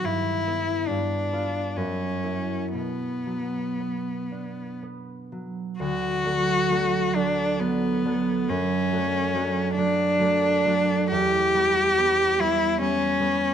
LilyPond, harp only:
\new Staff \with { instrumentName = "Harp" } { \time 3/4 \key b \minor \tempo 4 = 67 <g, b>8 <b e'>8 g,8 <b f'>8 fis,8 <ais e'>8 | b,8 fis8 b8 d'8 b8 fis8 | \key d \major d,8 <fis a d'>8 <fis a d'>8 <fis a d'>8 <fis a d'>8 <fis a d'>8 | fis,8 <fis a d'>8 <fis a d'>8 <fis a d'>8 <fis a d'>8 <fis a d'>8 |
e,8 <g b>8 <g b>8 <g b>8 <g b>8 <g b>8 | }